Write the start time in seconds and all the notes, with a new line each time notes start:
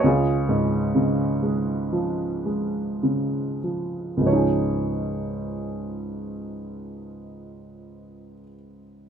0.00 C#2 C#5
0.05 F4 G#4
0.49 G#2
0.95 C#3
1.43 G#3
1.92 F3
2.46 G#3
3.03 C#3
3.64 F3
4.17 C#2
4.21 G#2 F3
4.27 C#4 C#5
4.33 D#4 G#4